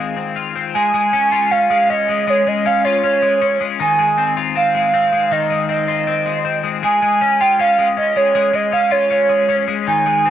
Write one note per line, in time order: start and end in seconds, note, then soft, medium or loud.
0.00 0.75 D#3 medium
0.00 0.75 G#3 medium
0.00 0.15 C4 medium
0.00 0.35 F4 medium
0.00 0.35 F5 medium
0.17 0.54 C4 soft
0.36 1.31 F4 medium
0.56 0.79 C4 medium
0.74 0.93 G#3 medium
0.74 1.53 G#5 loud
0.94 1.70 G#3 medium
1.13 1.50 C#4 medium
1.32 2.84 F4 medium
1.51 1.89 C#4 medium
1.51 1.69 F5 loud
1.70 2.08 G#3 medium
1.70 1.88 F5 loud
1.90 2.64 C#4 medium
1.90 2.31 D#5 loud
2.09 2.27 G#3 medium
2.27 2.46 G#3 medium
2.27 2.50 C#5 loud
2.47 3.22 G#3 medium
2.47 2.68 D#5 medium
2.66 3.02 C#4 medium
2.66 2.86 F5 loud
2.84 4.37 F4 medium
2.84 3.03 C#5 loud
3.04 3.40 C#4 medium
3.04 3.57 C#5 loud
3.22 3.60 G#3 medium
3.42 3.84 C#4 medium
3.60 3.98 G#3 medium
3.80 5.30 D#3 medium
3.80 4.34 G#5 loud
3.99 4.74 G#3 medium
4.18 4.55 C4 medium
4.37 5.88 F4 medium
4.56 4.93 C4 medium
4.56 4.74 F5 loud
4.75 5.12 G#3 medium
4.75 5.34 F5 loud
4.94 5.68 C4 medium
5.13 5.50 G#3 medium
5.31 6.83 D#3 medium
5.31 5.70 D#5 loud
5.50 6.26 G#3 medium
5.69 6.06 C4 medium
5.69 6.61 D#5 medium
5.88 7.40 F4 medium
6.07 6.44 C4 medium
6.26 6.63 G#3 medium
6.45 6.87 C4 medium
6.64 6.83 G#3 medium
6.83 7.02 G#3 medium
6.83 7.43 G#5 loud
7.02 7.78 G#3 medium
7.21 7.58 C#4 medium
7.41 8.91 F4 medium
7.41 7.60 G5 loud
7.59 7.96 C#4 medium
7.59 7.78 F5 loud
7.78 8.16 G#3 medium
7.78 7.88 F5 medium
7.97 8.71 C#4 medium
7.97 8.18 D#5 loud
8.16 8.34 G#3 medium
8.16 8.56 C#5 medium
8.35 8.53 G#3 medium
8.53 9.29 G#3 medium
8.53 8.73 D#5 loud
8.72 9.09 C#4 medium
8.72 8.93 F5 loud
8.91 10.30 F4 medium
8.91 9.10 C#5 medium
9.11 9.48 C#4 medium
9.11 9.64 C#5 loud
9.29 9.67 G#3 medium
9.49 9.91 C#4 medium
9.68 10.06 G#3 medium
9.87 10.30 D#3 medium
9.87 10.30 G#5 loud
10.06 10.30 G#3 medium
10.26 10.30 C4 medium